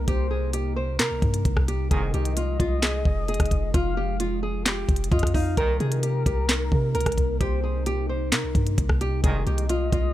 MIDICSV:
0, 0, Header, 1, 7, 480
1, 0, Start_track
1, 0, Key_signature, -3, "minor"
1, 0, Tempo, 458015
1, 82, Time_signature, 4, 2, 24, 8
1, 10620, End_track
2, 0, Start_track
2, 0, Title_t, "Soft synth lead"
2, 0, Program_c, 0, 80
2, 82, Note_on_c, 0, 72, 103
2, 533, Note_off_c, 0, 72, 0
2, 2002, Note_on_c, 0, 75, 124
2, 3880, Note_off_c, 0, 75, 0
2, 3922, Note_on_c, 0, 77, 108
2, 4373, Note_off_c, 0, 77, 0
2, 5362, Note_on_c, 0, 75, 85
2, 5590, Note_off_c, 0, 75, 0
2, 5601, Note_on_c, 0, 77, 82
2, 5830, Note_off_c, 0, 77, 0
2, 5841, Note_on_c, 0, 70, 116
2, 7719, Note_off_c, 0, 70, 0
2, 7761, Note_on_c, 0, 72, 97
2, 8213, Note_off_c, 0, 72, 0
2, 9682, Note_on_c, 0, 75, 122
2, 10620, Note_off_c, 0, 75, 0
2, 10620, End_track
3, 0, Start_track
3, 0, Title_t, "Nylon-string guitar"
3, 0, Program_c, 1, 24
3, 83, Note_on_c, 1, 67, 111
3, 294, Note_off_c, 1, 67, 0
3, 321, Note_on_c, 1, 68, 69
3, 533, Note_off_c, 1, 68, 0
3, 562, Note_on_c, 1, 67, 84
3, 773, Note_off_c, 1, 67, 0
3, 801, Note_on_c, 1, 72, 81
3, 1013, Note_off_c, 1, 72, 0
3, 1042, Note_on_c, 1, 70, 78
3, 1720, Note_off_c, 1, 70, 0
3, 1763, Note_on_c, 1, 67, 91
3, 1974, Note_off_c, 1, 67, 0
3, 2004, Note_on_c, 1, 68, 109
3, 2214, Note_off_c, 1, 68, 0
3, 2245, Note_on_c, 1, 67, 87
3, 2455, Note_off_c, 1, 67, 0
3, 2484, Note_on_c, 1, 65, 92
3, 2694, Note_off_c, 1, 65, 0
3, 2723, Note_on_c, 1, 65, 95
3, 2934, Note_off_c, 1, 65, 0
3, 2963, Note_on_c, 1, 68, 83
3, 3413, Note_off_c, 1, 68, 0
3, 3444, Note_on_c, 1, 68, 89
3, 3894, Note_off_c, 1, 68, 0
3, 3922, Note_on_c, 1, 65, 111
3, 4133, Note_off_c, 1, 65, 0
3, 4161, Note_on_c, 1, 67, 87
3, 4373, Note_off_c, 1, 67, 0
3, 4401, Note_on_c, 1, 65, 88
3, 4613, Note_off_c, 1, 65, 0
3, 4641, Note_on_c, 1, 68, 77
3, 4852, Note_off_c, 1, 68, 0
3, 4884, Note_on_c, 1, 67, 83
3, 5334, Note_off_c, 1, 67, 0
3, 5363, Note_on_c, 1, 65, 91
3, 5574, Note_off_c, 1, 65, 0
3, 5599, Note_on_c, 1, 63, 87
3, 5811, Note_off_c, 1, 63, 0
3, 5843, Note_on_c, 1, 70, 114
3, 6054, Note_off_c, 1, 70, 0
3, 6081, Note_on_c, 1, 68, 86
3, 6293, Note_off_c, 1, 68, 0
3, 6322, Note_on_c, 1, 67, 86
3, 6533, Note_off_c, 1, 67, 0
3, 6560, Note_on_c, 1, 67, 84
3, 6772, Note_off_c, 1, 67, 0
3, 6804, Note_on_c, 1, 70, 90
3, 7254, Note_off_c, 1, 70, 0
3, 7281, Note_on_c, 1, 70, 90
3, 7732, Note_off_c, 1, 70, 0
3, 7762, Note_on_c, 1, 67, 111
3, 7973, Note_off_c, 1, 67, 0
3, 8001, Note_on_c, 1, 68, 71
3, 8213, Note_off_c, 1, 68, 0
3, 8243, Note_on_c, 1, 67, 87
3, 8454, Note_off_c, 1, 67, 0
3, 8482, Note_on_c, 1, 72, 82
3, 8693, Note_off_c, 1, 72, 0
3, 8723, Note_on_c, 1, 70, 80
3, 9400, Note_off_c, 1, 70, 0
3, 9443, Note_on_c, 1, 67, 89
3, 9654, Note_off_c, 1, 67, 0
3, 9682, Note_on_c, 1, 68, 110
3, 9893, Note_off_c, 1, 68, 0
3, 9924, Note_on_c, 1, 67, 88
3, 10134, Note_off_c, 1, 67, 0
3, 10162, Note_on_c, 1, 65, 89
3, 10373, Note_off_c, 1, 65, 0
3, 10403, Note_on_c, 1, 65, 96
3, 10614, Note_off_c, 1, 65, 0
3, 10620, End_track
4, 0, Start_track
4, 0, Title_t, "Ambient pad"
4, 0, Program_c, 2, 92
4, 0, Note_on_c, 2, 48, 86
4, 0, Note_on_c, 2, 58, 76
4, 0, Note_on_c, 2, 63, 94
4, 1963, Note_off_c, 2, 48, 0
4, 1963, Note_off_c, 2, 58, 0
4, 2001, Note_on_c, 2, 53, 88
4, 2001, Note_on_c, 2, 56, 89
4, 3880, Note_off_c, 2, 63, 0
4, 3920, Note_on_c, 2, 65, 94
4, 5803, Note_off_c, 2, 53, 0
4, 5803, Note_off_c, 2, 56, 0
4, 5822, Note_off_c, 2, 65, 0
4, 5841, Note_on_c, 2, 58, 76
4, 5842, Note_on_c, 2, 48, 83
4, 5842, Note_on_c, 2, 63, 90
4, 9643, Note_off_c, 2, 48, 0
4, 9643, Note_off_c, 2, 58, 0
4, 9680, Note_on_c, 2, 56, 92
4, 9681, Note_on_c, 2, 53, 85
4, 10620, Note_off_c, 2, 53, 0
4, 10620, Note_off_c, 2, 56, 0
4, 10620, Note_off_c, 2, 63, 0
4, 10620, End_track
5, 0, Start_track
5, 0, Title_t, "Brass ensemble"
5, 0, Program_c, 3, 61
5, 2001, Note_on_c, 3, 36, 111
5, 2001, Note_on_c, 3, 44, 103
5, 2001, Note_on_c, 3, 51, 119
5, 2457, Note_off_c, 3, 44, 0
5, 2457, Note_off_c, 3, 51, 0
5, 2458, Note_off_c, 3, 36, 0
5, 5841, Note_on_c, 3, 36, 100
5, 5842, Note_on_c, 3, 46, 97
5, 5842, Note_on_c, 3, 51, 119
5, 6298, Note_off_c, 3, 36, 0
5, 6298, Note_off_c, 3, 46, 0
5, 6298, Note_off_c, 3, 51, 0
5, 9681, Note_on_c, 3, 36, 110
5, 9681, Note_on_c, 3, 44, 104
5, 9681, Note_on_c, 3, 51, 113
5, 10137, Note_off_c, 3, 36, 0
5, 10137, Note_off_c, 3, 51, 0
5, 10138, Note_off_c, 3, 44, 0
5, 10620, End_track
6, 0, Start_track
6, 0, Title_t, "808-style bass"
6, 0, Program_c, 4, 38
6, 81, Note_on_c, 4, 36, 107
6, 1042, Note_on_c, 4, 48, 101
6, 1057, Note_off_c, 4, 36, 0
6, 1161, Note_on_c, 4, 36, 101
6, 1177, Note_off_c, 4, 48, 0
6, 1275, Note_off_c, 4, 36, 0
6, 1281, Note_on_c, 4, 43, 103
6, 1512, Note_off_c, 4, 43, 0
6, 1522, Note_on_c, 4, 36, 108
6, 1983, Note_off_c, 4, 36, 0
6, 2002, Note_on_c, 4, 29, 115
6, 2232, Note_off_c, 4, 29, 0
6, 2242, Note_on_c, 4, 36, 103
6, 2703, Note_off_c, 4, 36, 0
6, 2722, Note_on_c, 4, 36, 107
6, 3182, Note_off_c, 4, 36, 0
6, 3200, Note_on_c, 4, 29, 105
6, 3547, Note_off_c, 4, 29, 0
6, 3562, Note_on_c, 4, 29, 100
6, 3907, Note_off_c, 4, 29, 0
6, 3922, Note_on_c, 4, 29, 114
6, 5080, Note_off_c, 4, 29, 0
6, 5121, Note_on_c, 4, 29, 103
6, 5352, Note_off_c, 4, 29, 0
6, 5361, Note_on_c, 4, 41, 105
6, 5822, Note_off_c, 4, 41, 0
6, 5841, Note_on_c, 4, 36, 116
6, 6072, Note_off_c, 4, 36, 0
6, 6081, Note_on_c, 4, 48, 109
6, 6542, Note_off_c, 4, 48, 0
6, 6561, Note_on_c, 4, 36, 110
6, 7022, Note_off_c, 4, 36, 0
6, 7041, Note_on_c, 4, 48, 105
6, 7282, Note_on_c, 4, 37, 101
6, 7297, Note_off_c, 4, 48, 0
6, 7396, Note_off_c, 4, 37, 0
6, 7401, Note_on_c, 4, 36, 99
6, 7747, Note_off_c, 4, 36, 0
6, 7762, Note_on_c, 4, 36, 109
6, 8721, Note_on_c, 4, 48, 100
6, 8737, Note_off_c, 4, 36, 0
6, 8842, Note_on_c, 4, 36, 105
6, 8857, Note_off_c, 4, 48, 0
6, 8956, Note_off_c, 4, 36, 0
6, 8961, Note_on_c, 4, 43, 101
6, 9191, Note_off_c, 4, 43, 0
6, 9201, Note_on_c, 4, 36, 108
6, 9662, Note_off_c, 4, 36, 0
6, 9682, Note_on_c, 4, 29, 112
6, 9912, Note_off_c, 4, 29, 0
6, 9921, Note_on_c, 4, 36, 108
6, 10382, Note_off_c, 4, 36, 0
6, 10401, Note_on_c, 4, 36, 105
6, 10620, Note_off_c, 4, 36, 0
6, 10620, End_track
7, 0, Start_track
7, 0, Title_t, "Drums"
7, 81, Note_on_c, 9, 42, 79
7, 82, Note_on_c, 9, 36, 114
7, 186, Note_off_c, 9, 36, 0
7, 186, Note_off_c, 9, 42, 0
7, 560, Note_on_c, 9, 42, 87
7, 665, Note_off_c, 9, 42, 0
7, 1041, Note_on_c, 9, 38, 120
7, 1044, Note_on_c, 9, 42, 92
7, 1049, Note_on_c, 9, 39, 99
7, 1146, Note_off_c, 9, 38, 0
7, 1149, Note_off_c, 9, 42, 0
7, 1154, Note_off_c, 9, 39, 0
7, 1281, Note_on_c, 9, 36, 99
7, 1282, Note_on_c, 9, 42, 46
7, 1385, Note_off_c, 9, 36, 0
7, 1387, Note_off_c, 9, 42, 0
7, 1402, Note_on_c, 9, 42, 79
7, 1507, Note_off_c, 9, 42, 0
7, 1521, Note_on_c, 9, 42, 75
7, 1522, Note_on_c, 9, 36, 105
7, 1626, Note_off_c, 9, 36, 0
7, 1626, Note_off_c, 9, 42, 0
7, 1641, Note_on_c, 9, 36, 88
7, 1642, Note_on_c, 9, 37, 98
7, 1746, Note_off_c, 9, 36, 0
7, 1747, Note_off_c, 9, 37, 0
7, 1764, Note_on_c, 9, 42, 77
7, 1869, Note_off_c, 9, 42, 0
7, 2002, Note_on_c, 9, 36, 108
7, 2002, Note_on_c, 9, 42, 82
7, 2107, Note_off_c, 9, 36, 0
7, 2107, Note_off_c, 9, 42, 0
7, 2242, Note_on_c, 9, 42, 46
7, 2347, Note_off_c, 9, 42, 0
7, 2362, Note_on_c, 9, 42, 80
7, 2467, Note_off_c, 9, 42, 0
7, 2481, Note_on_c, 9, 42, 86
7, 2586, Note_off_c, 9, 42, 0
7, 2722, Note_on_c, 9, 36, 92
7, 2724, Note_on_c, 9, 42, 70
7, 2826, Note_off_c, 9, 36, 0
7, 2829, Note_off_c, 9, 42, 0
7, 2962, Note_on_c, 9, 38, 121
7, 2965, Note_on_c, 9, 42, 92
7, 2970, Note_on_c, 9, 39, 98
7, 3066, Note_off_c, 9, 38, 0
7, 3070, Note_off_c, 9, 42, 0
7, 3075, Note_off_c, 9, 39, 0
7, 3201, Note_on_c, 9, 36, 101
7, 3306, Note_off_c, 9, 36, 0
7, 3442, Note_on_c, 9, 42, 66
7, 3502, Note_off_c, 9, 42, 0
7, 3502, Note_on_c, 9, 42, 65
7, 3561, Note_on_c, 9, 36, 87
7, 3562, Note_off_c, 9, 42, 0
7, 3562, Note_on_c, 9, 37, 93
7, 3562, Note_on_c, 9, 42, 62
7, 3622, Note_off_c, 9, 42, 0
7, 3622, Note_on_c, 9, 42, 63
7, 3666, Note_off_c, 9, 36, 0
7, 3667, Note_off_c, 9, 37, 0
7, 3681, Note_on_c, 9, 36, 89
7, 3683, Note_off_c, 9, 42, 0
7, 3683, Note_on_c, 9, 42, 76
7, 3785, Note_off_c, 9, 36, 0
7, 3788, Note_off_c, 9, 42, 0
7, 3922, Note_on_c, 9, 36, 109
7, 3922, Note_on_c, 9, 42, 80
7, 4027, Note_off_c, 9, 36, 0
7, 4027, Note_off_c, 9, 42, 0
7, 4401, Note_on_c, 9, 42, 85
7, 4505, Note_off_c, 9, 42, 0
7, 4881, Note_on_c, 9, 38, 118
7, 4884, Note_on_c, 9, 42, 97
7, 4890, Note_on_c, 9, 39, 100
7, 4986, Note_off_c, 9, 38, 0
7, 4989, Note_off_c, 9, 42, 0
7, 4994, Note_off_c, 9, 39, 0
7, 5121, Note_on_c, 9, 36, 100
7, 5122, Note_on_c, 9, 42, 46
7, 5202, Note_off_c, 9, 42, 0
7, 5202, Note_on_c, 9, 42, 62
7, 5225, Note_off_c, 9, 36, 0
7, 5281, Note_off_c, 9, 42, 0
7, 5281, Note_on_c, 9, 42, 76
7, 5361, Note_off_c, 9, 42, 0
7, 5361, Note_on_c, 9, 36, 109
7, 5361, Note_on_c, 9, 42, 48
7, 5441, Note_off_c, 9, 42, 0
7, 5441, Note_on_c, 9, 42, 65
7, 5466, Note_off_c, 9, 36, 0
7, 5481, Note_on_c, 9, 36, 86
7, 5481, Note_on_c, 9, 37, 92
7, 5521, Note_off_c, 9, 42, 0
7, 5521, Note_on_c, 9, 42, 80
7, 5586, Note_off_c, 9, 36, 0
7, 5586, Note_off_c, 9, 37, 0
7, 5600, Note_on_c, 9, 36, 93
7, 5603, Note_on_c, 9, 46, 57
7, 5626, Note_off_c, 9, 42, 0
7, 5705, Note_off_c, 9, 36, 0
7, 5708, Note_off_c, 9, 46, 0
7, 5841, Note_on_c, 9, 36, 115
7, 5841, Note_on_c, 9, 42, 79
7, 5946, Note_off_c, 9, 36, 0
7, 5946, Note_off_c, 9, 42, 0
7, 6081, Note_on_c, 9, 42, 47
7, 6186, Note_off_c, 9, 42, 0
7, 6201, Note_on_c, 9, 42, 79
7, 6306, Note_off_c, 9, 42, 0
7, 6320, Note_on_c, 9, 42, 85
7, 6425, Note_off_c, 9, 42, 0
7, 6561, Note_on_c, 9, 36, 98
7, 6564, Note_on_c, 9, 42, 71
7, 6666, Note_off_c, 9, 36, 0
7, 6669, Note_off_c, 9, 42, 0
7, 6801, Note_on_c, 9, 38, 123
7, 6804, Note_on_c, 9, 42, 94
7, 6809, Note_on_c, 9, 39, 97
7, 6906, Note_off_c, 9, 38, 0
7, 6909, Note_off_c, 9, 42, 0
7, 6914, Note_off_c, 9, 39, 0
7, 7040, Note_on_c, 9, 36, 99
7, 7145, Note_off_c, 9, 36, 0
7, 7282, Note_on_c, 9, 42, 65
7, 7342, Note_off_c, 9, 42, 0
7, 7342, Note_on_c, 9, 42, 65
7, 7401, Note_on_c, 9, 36, 83
7, 7402, Note_off_c, 9, 42, 0
7, 7402, Note_on_c, 9, 37, 96
7, 7402, Note_on_c, 9, 42, 64
7, 7462, Note_off_c, 9, 42, 0
7, 7462, Note_on_c, 9, 42, 66
7, 7506, Note_off_c, 9, 36, 0
7, 7507, Note_off_c, 9, 37, 0
7, 7521, Note_on_c, 9, 36, 89
7, 7524, Note_off_c, 9, 42, 0
7, 7524, Note_on_c, 9, 42, 78
7, 7625, Note_off_c, 9, 36, 0
7, 7629, Note_off_c, 9, 42, 0
7, 7762, Note_on_c, 9, 36, 111
7, 7762, Note_on_c, 9, 42, 78
7, 7867, Note_off_c, 9, 36, 0
7, 7867, Note_off_c, 9, 42, 0
7, 8240, Note_on_c, 9, 42, 84
7, 8345, Note_off_c, 9, 42, 0
7, 8721, Note_on_c, 9, 38, 121
7, 8724, Note_on_c, 9, 42, 94
7, 8729, Note_on_c, 9, 39, 96
7, 8826, Note_off_c, 9, 38, 0
7, 8829, Note_off_c, 9, 42, 0
7, 8834, Note_off_c, 9, 39, 0
7, 8960, Note_on_c, 9, 36, 100
7, 8962, Note_on_c, 9, 42, 44
7, 9065, Note_off_c, 9, 36, 0
7, 9066, Note_off_c, 9, 42, 0
7, 9082, Note_on_c, 9, 42, 78
7, 9187, Note_off_c, 9, 42, 0
7, 9201, Note_on_c, 9, 36, 105
7, 9201, Note_on_c, 9, 42, 76
7, 9306, Note_off_c, 9, 36, 0
7, 9306, Note_off_c, 9, 42, 0
7, 9321, Note_on_c, 9, 36, 87
7, 9321, Note_on_c, 9, 37, 98
7, 9426, Note_off_c, 9, 36, 0
7, 9426, Note_off_c, 9, 37, 0
7, 9443, Note_on_c, 9, 42, 78
7, 9548, Note_off_c, 9, 42, 0
7, 9681, Note_on_c, 9, 36, 114
7, 9681, Note_on_c, 9, 42, 81
7, 9786, Note_off_c, 9, 36, 0
7, 9786, Note_off_c, 9, 42, 0
7, 9921, Note_on_c, 9, 42, 47
7, 10026, Note_off_c, 9, 42, 0
7, 10041, Note_on_c, 9, 42, 80
7, 10145, Note_off_c, 9, 42, 0
7, 10160, Note_on_c, 9, 42, 83
7, 10265, Note_off_c, 9, 42, 0
7, 10401, Note_on_c, 9, 36, 96
7, 10403, Note_on_c, 9, 42, 71
7, 10506, Note_off_c, 9, 36, 0
7, 10508, Note_off_c, 9, 42, 0
7, 10620, End_track
0, 0, End_of_file